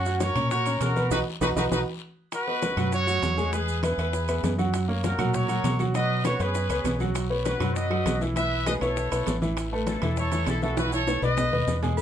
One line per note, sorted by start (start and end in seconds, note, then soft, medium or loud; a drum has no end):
0.00 0.30 F#2 medium
0.00 0.20 C#4 medium
0.00 0.19 F#4 medium
0.06 0.31 F#4 medium
0.06 0.31 F#5 medium
0.06 0.31 F#6 medium
0.06 high conga soft
0.06 maracas medium
0.20 0.51 A#4 medium
0.20 0.50 C#5 loud
0.20 high bongo medium
0.20 high conga medium
0.20 high timbale medium
0.20 low timbale medium
0.20 short guiro medium
0.20 maracas medium
0.35 0.78 A#2 medium
0.35 0.48 C#4 medium
0.35 0.49 C#5 medium
0.35 0.49 C#6 medium
0.35 high bongo soft
0.35 low conga medium
0.35 high timbale medium
0.35 short guiro medium
0.35 maracas soft
0.51 0.64 F#4 medium
0.51 0.80 A#4 medium
0.51 0.79 C#5 loud
0.51 0.64 F#5 medium
0.51 0.64 F#6 medium
0.51 high bongo medium
0.51 high conga soft
0.51 long guiro medium
0.51 maracas medium
0.66 0.91 C#4 medium
0.66 0.91 C#5 medium
0.66 0.91 C#6 medium
0.66 high bongo soft
0.66 high conga soft
0.66 high timbale medium
0.66 maracas medium
0.81 1.09 B2 medium
0.81 1.10 F#4 medium
0.81 1.10 A#4 medium
0.81 high bongo soft
0.81 low bongo medium
0.81 high conga medium
0.81 high timbale medium
0.81 low timbale medium
0.81 short guiro medium
0.81 maracas medium
0.96 1.08 B3 medium
0.96 1.09 B4 medium
0.96 1.09 B5 medium
0.96 high bongo soft
0.96 high conga medium
0.96 short guiro medium
0.96 maracas soft
1.11 1.22 B1 medium
1.11 1.19 D#4 loud
1.11 1.21 F#4 medium
1.11 1.19 F#4 loud
1.11 1.21 B4 medium
1.11 1.19 B4 loud
1.11 1.21 D#5 medium
1.11 low bongo loud
1.11 high conga medium
1.11 high timbale loud
1.11 long guiro medium
1.11 maracas loud
1.41 1.52 B1 loud
1.41 1.50 D#4 medium
1.41 1.51 F#4 loud
1.41 1.49 F#4 loud
1.41 1.51 B4 loud
1.41 1.50 B4 medium
1.41 1.51 D#5 loud
1.41 low bongo loud
1.41 high conga loud
1.41 high timbale loud
1.41 maracas loud
1.56 1.68 B1 loud
1.56 1.64 D#4 loud
1.56 1.66 F#4 loud
1.56 1.64 F#4 medium
1.56 1.66 B4 medium
1.56 1.64 B4 medium
1.56 1.66 D#5 loud
1.56 low bongo medium
1.56 high conga loud
1.56 high timbale loud
1.56 long guiro loud
1.56 maracas loud
1.72 1.83 B1 loud
1.72 1.80 D#4 loud
1.72 1.82 F#4 loud
1.72 1.80 F#4 medium
1.72 1.81 B4 medium
1.72 1.80 B4 medium
1.72 1.81 D#5 medium
1.72 low bongo loud
1.72 high conga loud
1.72 high timbale medium
1.72 long guiro loud
1.72 maracas medium
2.32 2.90 F#4 medium
2.32 2.90 B4 loud
2.32 high bongo medium
2.32 high conga soft
2.32 high timbale medium
2.32 long guiro medium
2.32 maracas medium
2.47 2.72 B3 medium
2.47 2.72 B4 medium
2.47 2.72 D#5 medium
2.47 high conga soft
2.62 high bongo medium
2.62 high conga medium
2.62 high timbale medium
2.62 low timbale medium
2.62 short guiro medium
2.62 maracas medium
2.77 3.19 F#2 loud
2.77 3.02 F#3 medium
2.77 3.02 F#4 medium
2.77 3.03 F#5 medium
2.77 high bongo soft
2.77 low conga medium
2.77 high timbale medium
2.77 short guiro medium
2.77 maracas soft
2.92 3.50 F#4 medium
2.92 3.50 C#5 loud
2.92 high bongo medium
2.92 high conga soft
2.92 maracas medium
3.07 3.32 F#3 medium
3.07 3.32 F#4 medium
3.07 3.32 F#5 medium
3.07 high bongo soft
3.07 high conga soft
3.07 high timbale medium
3.07 maracas medium
3.22 3.93 E2 medium
3.22 high bongo soft
3.22 low bongo medium
3.22 high conga medium
3.22 high timbale medium
3.22 low timbale medium
3.22 short guiro medium
3.22 maracas medium
3.37 3.50 G#3 medium
3.37 3.50 G#4 medium
3.37 3.50 G#5 medium
3.37 high bongo soft
3.37 high conga medium
3.37 short guiro medium
3.37 maracas soft
3.52 3.77 G#3 medium
3.52 3.78 G#4 medium
3.52 3.84 G#4 medium
3.52 3.83 B4 loud
3.52 3.78 G#5 medium
3.52 high bongo medium
3.52 high conga soft
3.52 high timbale medium
3.52 long guiro medium
3.52 maracas medium
3.68 high conga soft
3.68 maracas medium
3.83 3.96 B3 medium
3.83 4.55 G#4 medium
3.83 3.96 B4 medium
3.83 4.55 B4 medium
3.83 3.96 E5 medium
3.83 high bongo medium
3.83 high conga loud
3.83 high timbale medium
3.83 low timbale medium
3.83 short guiro medium
3.83 maracas medium
3.98 4.40 E2 medium
3.98 4.23 B3 medium
3.98 4.23 B4 medium
3.98 4.24 E5 medium
3.98 high bongo soft
3.98 high conga soft
3.98 high timbale medium
3.98 short guiro medium
3.98 maracas soft
4.13 high bongo medium
4.13 high conga soft
4.13 long guiro medium
4.13 maracas medium
4.28 4.53 B3 medium
4.28 4.53 B4 medium
4.28 4.54 E5 medium
4.28 high bongo soft
4.28 high conga soft
4.28 high timbale medium
4.28 maracas medium
4.43 5.13 F#2 medium
4.43 high bongo soft
4.43 low bongo medium
4.43 high conga medium
4.43 high timbale medium
4.43 low timbale medium
4.43 short guiro medium
4.43 maracas medium
4.58 4.83 F#3 medium
4.58 4.83 F#4 medium
4.58 4.84 F#5 medium
4.58 high bongo soft
4.58 high conga medium
4.58 short guiro medium
4.58 maracas soft
4.74 high bongo medium
4.74 high timbale medium
4.74 long guiro medium
4.74 maracas medium
4.88 5.13 A#3 medium
4.88 5.13 A#4 medium
4.88 5.14 C#5 medium
4.88 high conga soft
5.04 5.33 F#4 medium
5.04 5.32 A#4 medium
5.04 high bongo medium
5.04 high conga medium
5.04 high timbale medium
5.04 low timbale medium
5.04 short guiro medium
5.04 maracas medium
5.18 5.61 A#2 medium
5.18 5.44 F#3 medium
5.18 5.44 F#4 medium
5.18 5.44 F#5 medium
5.18 high bongo soft
5.18 low conga medium
5.18 high timbale medium
5.18 short guiro medium
5.18 maracas soft
5.34 5.80 A#4 medium
5.34 5.80 C#5 loud
5.34 high bongo medium
5.34 high conga soft
5.34 low conga medium
5.34 long guiro medium
5.34 maracas medium
5.49 5.74 F#3 medium
5.49 5.74 F#4 medium
5.49 5.74 F#5 medium
5.49 high bongo soft
5.49 high conga soft
5.49 high timbale medium
5.49 maracas medium
5.64 6.34 B2 medium
5.64 high bongo soft
5.64 low bongo medium
5.64 high conga medium
5.64 high timbale loud
5.64 low timbale medium
5.64 short guiro medium
5.64 maracas medium
5.79 5.92 F#3 medium
5.79 5.92 F#4 medium
5.79 5.92 F#5 medium
5.79 high bongo soft
5.79 high conga medium
5.79 short guiro medium
5.79 maracas soft
5.94 6.19 F#3 medium
5.94 6.20 F#4 medium
5.94 6.23 B4 medium
5.94 6.23 D#5 loud
5.94 6.20 F#5 medium
5.94 high bongo medium
5.94 high conga soft
5.94 high timbale medium
5.94 long guiro medium
5.94 maracas medium
6.10 high conga soft
6.24 6.37 B3 medium
6.24 6.39 F#4 medium
6.24 6.37 B4 medium
6.24 6.37 C#5 medium
6.24 6.39 C#5 medium
6.24 high bongo medium
6.24 high conga medium
6.24 high timbale medium
6.24 low timbale medium
6.24 short guiro medium
6.24 maracas medium
6.40 6.68 F#2 medium
6.40 6.65 B3 medium
6.40 7.01 G#4 medium
6.40 6.65 B4 medium
6.40 7.01 B4 medium
6.40 6.65 C#5 medium
6.40 high bongo soft
6.40 high conga soft
6.40 high timbale medium
6.40 short guiro medium
6.40 maracas soft
6.55 high bongo medium
6.55 high conga soft
6.55 long guiro medium
6.55 maracas medium
6.69 6.84 C#2 medium
6.69 6.95 B3 medium
6.69 6.95 B4 medium
6.69 6.95 C#5 medium
6.69 high bongo soft
6.69 high conga soft
6.69 high timbale medium
6.69 maracas medium
6.84 7.55 B1 medium
6.84 high bongo soft
6.84 low bongo medium
6.84 high conga medium
6.84 high timbale medium
6.84 low timbale medium
6.84 short guiro medium
6.84 maracas medium
7.00 7.25 F#3 medium
7.00 7.25 F#4 medium
7.00 7.25 F#5 medium
7.00 high bongo soft
7.00 high conga medium
7.00 short guiro medium
7.00 maracas soft
7.15 high bongo medium
7.15 high conga soft
7.15 high timbale medium
7.15 long guiro medium
7.15 maracas medium
7.30 7.55 B3 medium
7.30 7.55 B4 medium
7.30 7.55 C#5 medium
7.30 high conga soft
7.45 7.74 F#4 medium
7.45 7.74 B4 medium
7.45 high bongo medium
7.45 high conga medium
7.45 high timbale medium
7.45 low timbale medium
7.45 short guiro medium
7.45 maracas medium
7.60 8.02 F#2 medium
7.60 7.85 F#3 medium
7.60 7.85 F#4 medium
7.60 7.85 F#5 medium
7.60 high bongo soft
7.60 low conga medium
7.60 high timbale loud
7.60 short guiro medium
7.60 maracas soft
7.76 8.22 B4 medium
7.76 8.21 D#5 loud
7.76 high bongo medium
7.76 high conga soft
7.76 maracas medium
7.90 8.15 F#3 medium
7.90 8.15 F#4 medium
7.90 8.16 F#5 medium
7.90 high bongo soft
7.90 high conga soft
7.90 high timbale medium
8.05 8.76 B1 medium
8.05 high bongo soft
8.05 low bongo medium
8.05 high conga medium
8.05 high timbale medium
8.05 low timbale medium
8.05 short guiro medium
8.05 maracas medium
8.21 8.34 E3 medium
8.21 8.34 E4 medium
8.21 8.34 E5 medium
8.21 high bongo soft
8.21 high conga medium
8.21 short guiro medium
8.21 maracas soft
8.36 8.61 E3 medium
8.36 8.61 E4 medium
8.36 8.65 B4 medium
8.36 8.61 E5 medium
8.36 8.65 E5 loud
8.36 high bongo medium
8.36 high timbale medium
8.36 long guiro medium
8.36 maracas medium
8.51 high conga soft
8.66 8.79 G#3 medium
8.66 8.79 G#4 medium
8.66 8.79 B4 medium
8.66 8.75 B4 medium
8.66 8.74 D#5 loud
8.66 high bongo medium
8.66 high conga medium
8.66 high timbale medium
8.66 low timbale medium
8.66 short guiro medium
8.66 maracas medium
8.81 9.09 B1 medium
8.81 9.06 B3 medium
8.81 9.06 E4 medium
8.81 9.39 A4 medium
8.81 9.06 B4 medium
8.81 9.38 C#5 medium
8.81 high bongo soft
8.81 high timbale medium
8.81 short guiro medium
8.81 maracas soft
8.96 high bongo medium
8.96 high conga soft
8.96 long guiro medium
8.96 maracas medium
9.11 9.26 B1 medium
9.11 9.36 B3 medium
9.11 9.36 E4 medium
9.11 9.37 B4 medium
9.11 high bongo soft
9.11 high conga soft
9.11 high timbale loud
9.11 maracas medium
9.26 9.96 A1 medium
9.26 high bongo soft
9.26 low bongo medium
9.26 high conga medium
9.26 high timbale medium
9.26 low timbale medium
9.26 short guiro medium
9.26 maracas medium
9.42 9.66 E3 medium
9.42 9.67 E4 medium
9.42 9.67 E5 medium
9.42 high bongo soft
9.42 high conga medium
9.42 short guiro medium
9.42 maracas soft
9.57 high bongo medium
9.57 high conga soft
9.57 high timbale medium
9.57 long guiro medium
9.57 maracas medium
9.72 9.97 A3 medium
9.72 9.97 A4 medium
9.72 9.97 B4 medium
9.72 high conga soft
9.87 10.15 E4 medium
9.87 10.15 A4 medium
9.87 high bongo medium
9.87 high conga loud
9.87 high timbale medium
9.87 low timbale medium
9.87 short guiro medium
9.87 maracas medium
10.02 10.44 E2 medium
10.02 10.27 E3 medium
10.02 10.27 E4 medium
10.02 10.27 E5 medium
10.02 high bongo soft
10.02 low conga medium
10.02 high timbale medium
10.02 short guiro medium
10.02 maracas soft
10.17 10.48 A4 medium
10.17 10.48 C#5 medium
10.17 high bongo medium
10.17 high conga soft
10.17 low conga medium
10.17 long guiro medium
10.17 maracas medium
10.32 10.57 E3 medium
10.32 10.57 E4 medium
10.32 10.57 E5 medium
10.32 high bongo soft
10.32 high conga soft
10.32 high timbale medium
10.32 maracas medium
10.47 11.17 B1 medium
10.47 10.62 E4 medium
10.47 10.62 A4 medium
10.47 high bongo soft
10.47 low bongo medium
10.47 high conga medium
10.47 high timbale medium
10.47 low timbale medium
10.47 short guiro medium
10.47 maracas medium
10.62 10.75 E3 medium
10.62 10.75 E4 medium
10.62 10.77 F#4 medium
10.62 10.77 A4 medium
10.62 10.75 E5 medium
10.62 high bongo soft
10.62 high conga medium
10.62 short guiro medium
10.62 maracas soft
10.77 11.02 E3 medium
10.77 11.02 E4 medium
10.77 10.92 F#4 medium
10.77 10.92 B4 loud
10.77 11.02 E5 medium
10.77 high bongo medium
10.77 high conga medium
10.77 high timbale medium
10.77 long guiro medium
10.77 maracas medium
10.92 11.21 A4 medium
10.92 11.21 C#5 loud
10.92 high timbale medium
10.92 maracas medium
11.07 11.20 B3 medium
11.07 11.20 B4 medium
11.07 high bongo medium
11.07 high timbale medium
11.07 short guiro medium
11.07 maracas medium
11.22 11.50 B1 medium
11.22 11.47 B3 medium
11.22 11.47 B4 medium
11.22 11.79 B4 medium
11.22 11.48 D#5 medium
11.22 11.80 D#5 loud
11.22 high bongo soft
11.22 low conga medium
11.22 short guiro medium
11.22 maracas soft
11.37 high bongo medium
11.37 low conga loud
11.37 low timbale medium
11.37 long guiro medium
11.37 maracas medium
11.52 11.66 D#2 medium
11.52 11.77 B3 medium
11.52 11.78 B4 medium
11.52 11.78 D#5 medium
11.52 high bongo soft
11.52 low conga medium
11.67 12.02 E2 medium
11.67 high bongo soft
11.67 low bongo medium
11.67 low conga medium
11.67 short guiro medium
11.67 maracas medium
11.83 11.95 G#3 medium
11.83 11.95 G#4 medium
11.83 11.95 G#5 medium
11.83 high bongo soft
11.83 low conga medium
11.83 low timbale medium
11.83 short guiro medium
11.83 maracas soft
11.97 cowbell loud
11.97 high conga soft
11.97 low agogo loud
11.97 long guiro medium
11.97 maracas medium